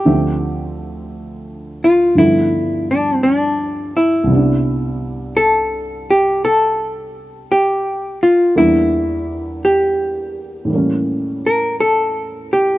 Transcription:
X:1
M:4/4
L:1/8
Q:"Swing" 1/4=56
K:C
V:1 name="Hollow-body jazz guitar"
G2 z F E D D E- | E2 A G A2 G F | E2 G3 _B A G |]
V:2 name="Grand piano" clef=bass
[D,,D,F,Ce]4 [G,,D,F,A,B,E]4 | [C,,C,G,B,D]8 | [E,,E,G,_B,D]4 [A,,E,G,B,^C]4 |]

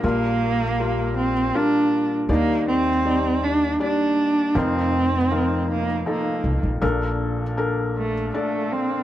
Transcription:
X:1
M:3/4
L:1/16
Q:1/4=79
K:Bb
V:1 name="Felt piano"
[G,FB]4 [G,FB]2 z2 [G,FB]4 | [G,Ed]4 [G,Ed]2 z2 [G,Dd]4 | [F,EB]4 [F,EB]2 z2 [F,EA]4 | [DAB]4 [DAB]2 z2 [DAd]4 |]
V:2 name="Felt piano" clef=bass
[B,,,B,,]12 | [E,,E,]12 | [F,,,F,,]12 | [B,,,B,,]12 |]
V:3 name="Cello"
B,6 C2 D3 z | B,2 C4 D2 D4 | C6 B,2 B,3 z | z6 A,2 A,2 C2 |]
V:4 name="Upright bass" clef=bass
B,,,8 z4 | E,,8 z4 | F,,8 z2 C,, B,,, | B,,,8 z4 |]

